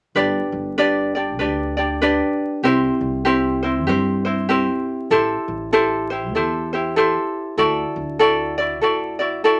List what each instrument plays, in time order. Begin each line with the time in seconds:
0.15 upright bass G1, ukulele D4 G4 B4 D5
0.52 upright bass G1
0.78 ukulele D4 G4 B4 D5
1.15 ukulele D4 G4 D5
1.39 upright bass D2, ukulele D4 G4 B4 D5
1.77 ukulele D4 G4 D5
2.02 ukulele D4 G4 B4 D5
2.63 upright bass C2, ukulele C4 E4 G4 C5
3.01 upright bass C2
3.25 ukulele C4 E4 G4 C5
3.63 ukulele C4 E4 C5
3.87 upright bass G2, ukulele C4 E4 G4 C5
4.25 ukulele C4 E4 C5
4.49 ukulele C4 E4 G4 C5
5.10 upright bass A1, ukulele E4 G4 A4 C5
5.48 upright bass A1
5.73 ukulele E4 G4 A4 C5
6.10 ukulele E4 G4 C5
6.34 upright bass E2, ukulele E4 G4 A4 C5
6.73 ukulele E4 G4 C5
6.96 ukulele E4 G4 A4 C5
7.58 upright bass D2, ukulele E4 F#4 A4 D5
7.96 upright bass D2
8.19 ukulele E4 F#4 A4 D5
8.58 ukulele E4 F#4 D5
8.81 upright bass A1, ukulele E4 F#4 A4 D5
9.19 ukulele E4 F#4 D5
9.44 ukulele E4 F#4 A4 D5